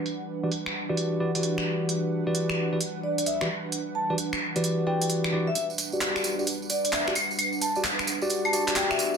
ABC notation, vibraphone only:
X:1
M:4/4
L:1/16
Q:"Swing 16ths" 1/4=131
K:Em
V:1 name="Vibraphone"
z16 | z8 z2 d d e z3 | z2 a z6 z g z4 e | z8 z2 d d e z3 |
z2 a z6 a a z g e3 |]